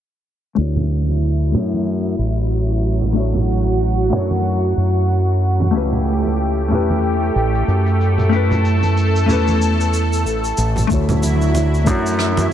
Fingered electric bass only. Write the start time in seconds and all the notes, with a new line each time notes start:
0.58 D2
1.54 F#2
2.19 A1
4.13 F#2
4.77 F#2
5.74 C#2
6.71 E2
7.35 A1
7.68 F#2
9.29 E2
10.25 A1
10.58 A1
10.90 D2
11.87 F#2